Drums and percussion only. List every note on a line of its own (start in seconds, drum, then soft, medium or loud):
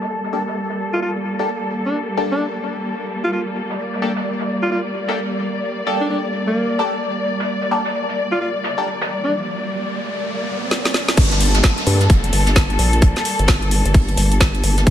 0.01 snare soft
0.10 closed hi-hat medium
0.24 snare soft
0.33 closed hi-hat medium
0.48 snare soft
0.56 closed hi-hat medium
0.70 snare soft
0.79 closed hi-hat medium
0.94 snare soft
1.02 closed hi-hat medium
1.25 closed hi-hat medium
1.40 snare soft
1.48 closed hi-hat medium
1.71 closed hi-hat medium
1.94 closed hi-hat medium
2.18 closed hi-hat medium
2.40 closed hi-hat medium
2.63 closed hi-hat medium
2.86 open hi-hat medium
3.10 closed hi-hat medium
3.33 closed hi-hat medium
3.56 closed hi-hat medium
3.70 snare soft
3.79 closed hi-hat medium
3.94 snare soft
4.02 closed hi-hat medium
4.16 snare medium
4.25 closed hi-hat medium
4.39 snare soft
4.48 closed hi-hat medium
4.62 snare soft
4.71 closed hi-hat medium
4.94 closed hi-hat medium
5.08 snare soft
5.18 closed hi-hat medium
5.40 closed hi-hat medium
5.64 closed hi-hat medium
5.86 closed hi-hat medium
6.11 closed hi-hat medium
6.33 closed hi-hat medium
6.56 open hi-hat medium
6.79 closed hi-hat medium
6.94 closed hi-hat soft
7.02 closed hi-hat medium
7.25 closed hi-hat medium
7.40 snare medium
7.48 closed hi-hat medium
7.62 snare soft
7.71 closed hi-hat medium
7.85 snare medium
7.95 closed hi-hat medium
8.09 snare soft
8.18 closed hi-hat medium
8.31 snare soft
8.41 closed hi-hat medium
8.64 snare medium
8.64 closed hi-hat medium
8.87 closed hi-hat medium
9.01 snare loud
9.01 closed hi-hat medium
9.24 closed hi-hat medium
10.71 snare medium
10.85 snare medium
10.94 snare medium
11.08 snare medium
11.17 kick loud
11.17 closed hi-hat medium
11.17 crash loud
11.32 snare soft
11.32 closed hi-hat soft
11.40 closed hi-hat medium
11.40 open hi-hat loud
11.54 snare medium
11.54 closed hi-hat medium
11.64 kick loud
11.64 snare loud
11.64 closed hi-hat medium
11.78 snare soft
11.78 closed hi-hat soft
11.87 closed hi-hat medium
11.87 open hi-hat loud
12.01 snare soft
12.01 closed hi-hat medium
12.10 kick loud
12.10 closed hi-hat loud
12.10 closed hi-hat medium
12.24 closed hi-hat soft
12.32 closed hi-hat medium
12.32 open hi-hat loud
12.46 snare soft
12.46 closed hi-hat medium
12.56 kick loud
12.56 snare loud
12.56 closed hi-hat medium
12.70 closed hi-hat soft
12.79 closed hi-hat medium
12.79 open hi-hat loud
12.93 closed hi-hat medium
13.01 kick loud
13.01 closed hi-hat medium
13.16 snare soft
13.16 closed hi-hat soft
13.25 closed hi-hat medium
13.25 open hi-hat loud
13.39 closed hi-hat medium
13.48 kick loud
13.48 snare loud
13.48 closed hi-hat medium
13.62 closed hi-hat soft
13.71 closed hi-hat medium
13.71 open hi-hat loud
13.85 closed hi-hat medium
13.94 kick loud
13.94 closed hi-hat medium
13.94 open hi-hat medium
14.09 closed hi-hat soft
14.17 closed hi-hat medium
14.17 open hi-hat loud
14.32 closed hi-hat medium
14.32 closed hi-hat soft
14.40 kick loud
14.40 snare loud
14.40 closed hi-hat loud
14.40 closed hi-hat medium
14.55 closed hi-hat soft
14.63 closed hi-hat medium
14.63 open hi-hat loud
14.78 snare medium
14.78 closed hi-hat medium
14.87 kick loud
14.87 closed hi-hat medium
14.87 closed hi-hat loud